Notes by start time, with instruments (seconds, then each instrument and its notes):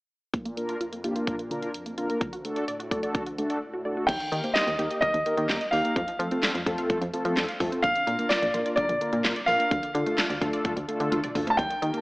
0.34 synth pluck A#2, analog polysynth A#2, kick, closed hi-hat
0.45 synth pluck A#3, closed hi-hat
0.57 analog polysynth A#3 D4 F4 A#4, closed hi-hat
0.69 synth pluck F4, closed hi-hat
0.80 analog polysynth F2, synth pluck F4, closed hi-hat
0.92 synth pluck A#3, closed hi-hat
1.04 analog polysynth A#3 D4 F4 G4, synth pluck F4, closed hi-hat
1.16 analog polysynth A#3 D4 F4 A#4, synth pluck F4, closed hi-hat
1.27 synth pluck A#2, analog polysynth A#2, kick, closed hi-hat
1.39 synth pluck A#3, closed hi-hat
1.51 synth pluck D3, analog polysynth A#3 D4 F4 A#4, closed hi-hat
1.62 synth pluck F4, closed hi-hat
1.74 analog polysynth F2, closed hi-hat
1.86 synth pluck A#3, closed hi-hat
1.98 analog polysynth A#3 D4 F4 A#4, synth pluck F4, closed hi-hat
2.09 synth pluck A#3, analog polysynth A#3 D4 F4 A#4, closed hi-hat
2.21 analog polysynth D2, synth pluck D3, kick, closed hi-hat
2.33 synth pluck F#4, closed hi-hat
2.45 analog polysynth A3 D4 F#4 A4, closed hi-hat
2.56 synth pluck D5, closed hi-hat
2.68 analog polysynth A2, synth pluck D5, closed hi-hat
2.80 synth pluck F#4, closed hi-hat
2.91 analog polysynth A3 D4 F#4 A4, synth pluck D5, kick, closed hi-hat
3.03 analog polysynth A3 D4 F#4 A4, synth pluck D5, closed hi-hat
3.15 analog polysynth D2, synth pluck D3, kick, closed hi-hat
3.26 synth pluck F#4, closed hi-hat
3.38 analog polysynth A3 D4 F#4 A4, synth pluck A3, closed hi-hat
3.50 synth pluck D5, closed hi-hat
3.62 analog polysynth A2
3.74 synth pluck F#4
3.85 analog polysynth A3 D4 F#4 A4, synth pluck D5
3.97 analog polysynth A3 D4 F#4 A4, synth pluck F#4
4.07 fm bass D#2, synth pluck D#3, grand piano G5, kick, closed hi-hat, crash
4.20 synth pluck D#3, closed hi-hat
4.32 fm bass D#3, synth pluck D#3, analog polysynth A#3 D#4 G4 A#4, closed hi-hat
4.43 analog polysynth A#3 D#4 G4 C5, synth pluck A#3, closed hi-hat
4.54 synth pluck G4, grand piano D#5, snare, clap, closed hi-hat
4.67 fm bass D#2, synth pluck D#5, closed hi-hat
4.79 fm bass D#2, analog polysynth A#3 D#4 G4 A#4, synth pluck G4, closed hi-hat
4.91 analog polysynth A#3 D#4 G4 A#4, synth pluck D#5, closed hi-hat
5.01 synth pluck D#3, grand piano D#5, kick, closed hi-hat
5.14 fm bass D#2, synth pluck D#3, closed hi-hat
5.26 synth pluck D#3, analog polysynth A#3 D#4 G4 A#4, closed hi-hat
5.37 fm bass D#3, analog polysynth A#3 D#4 G4 A#4, synth pluck A#3, closed hi-hat
5.49 fm bass D#2, synth pluck G4, snare, clap, closed hi-hat
5.61 synth pluck D#5, closed hi-hat
5.71 fm bass D#2, analog polysynth A#3 D#4 G4 A#4, synth pluck G4, grand piano F5, open hi-hat
5.84 analog polysynth A#3 D#4 G4 A#4, synth pluck A#3, closed hi-hat
5.96 fm bass F2, synth pluck F3, kick, closed hi-hat
6.08 synth pluck F3, closed hi-hat
6.19 fm bass F3, synth pluck F3, analog polysynth A3 C4 F4 A4, closed hi-hat
6.31 analog polysynth A3 C4 F4 A4, synth pluck C4, closed hi-hat
6.43 synth pluck A4, snare, clap, closed hi-hat
6.55 fm bass F2, synth pluck F5, closed hi-hat
6.66 fm bass F2, analog polysynth A3 C4 F4 A4, synth pluck A4, kick, closed hi-hat
6.78 analog polysynth A3 C4 F4 A4, synth pluck F5, closed hi-hat
6.90 synth pluck F3, kick, closed hi-hat
7.01 fm bass F2, synth pluck F3, closed hi-hat
7.13 synth pluck F3, analog polysynth A3 C4 F4 A4, closed hi-hat
7.25 fm bass F3, analog polysynth A3 C4 F4 A4, synth pluck C4, closed hi-hat
7.37 fm bass F2, synth pluck A4, snare, clap, closed hi-hat
7.49 synth pluck F5, closed hi-hat
7.60 fm bass F2, analog polysynth A3 C4 F4 A4, synth pluck A4, kick, open hi-hat
7.72 analog polysynth A3 C4 F4 A4, synth pluck C4, closed hi-hat
7.83 fm bass A#1, synth pluck D3, grand piano F5, kick, closed hi-hat
7.96 synth pluck D3, closed hi-hat
8.07 fm bass A#2, synth pluck D3, analog polysynth A#3 D4 F4 A#4, closed hi-hat
8.19 analog polysynth A#3 D4 F4 A#4, synth pluck A#3, closed hi-hat
8.29 synth pluck F4, grand piano D5, snare, clap, closed hi-hat
8.42 fm bass A#1, synth pluck D5, closed hi-hat
8.54 fm bass A#1, analog polysynth A#3 D4 F4 A#4, synth pluck F4, closed hi-hat
8.66 analog polysynth A#3 D4 F4 A#4, synth pluck D5, closed hi-hat
8.76 synth pluck D3, grand piano D5, kick, closed hi-hat
8.89 fm bass A#1, synth pluck D3, closed hi-hat
9.01 synth pluck D3, analog polysynth A#3 D4 F4 A#4, closed hi-hat
9.13 fm bass A#2, synth pluck A#3, analog polysynth A#3 D4 F4 A#4, closed hi-hat
9.24 fm bass A#1, synth pluck F4, snare, clap, closed hi-hat
9.36 synth pluck D5, closed hi-hat
9.46 fm bass A#1, analog polysynth A#3 D4 F4 A#4, synth pluck F4, grand piano F5, open hi-hat
9.59 synth pluck A#3, analog polysynth A#3 D4 F4 A#4, closed hi-hat
9.71 fm bass D2, synth pluck D3, kick, closed hi-hat
9.83 synth pluck D3, closed hi-hat
9.95 synth pluck D3, fm bass D3, analog polysynth A3 D4 F4 A4, closed hi-hat
10.06 synth pluck A3, analog polysynth A3 D4 F4 A4, closed hi-hat
10.18 synth pluck F4, snare, clap, closed hi-hat
10.30 fm bass D2, synth pluck D5, closed hi-hat
10.41 fm bass D2, analog polysynth A3 D4 F4 A4, synth pluck F4, kick, closed hi-hat
10.53 analog polysynth A3 D4 F4 A4, synth pluck D5, closed hi-hat
10.65 synth pluck D3, kick, closed hi-hat
10.77 fm bass D2, synth pluck D3, closed hi-hat
10.88 synth pluck D3, analog polysynth A3 D4 F4 A4, closed hi-hat
11.00 fm bass D3, analog polysynth A3 D4 F4 A4, synth pluck A3, closed hi-hat
11.12 fm bass D2, synth pluck F4, closed hi-hat, high tom
11.24 synth pluck D5, closed hi-hat, mid tom
11.35 fm bass D2, analog polysynth A3 D4 F4 A4, synth pluck F4, mid tom, open hi-hat
11.47 analog polysynth A3 D4 F4 C5, synth pluck A3, grand piano A5, closed hi-hat, floor tom
11.57 fm bass D#2, synth pluck D#3, grand piano G5, kick, closed hi-hat
11.70 synth pluck D#3, closed hi-hat
11.82 synth pluck D#3, fm bass D#3, analog polysynth A#3 D#4 G4 A#4, closed hi-hat
11.94 synth pluck A#3, analog polysynth A#3 D#4 G4 A#4, closed hi-hat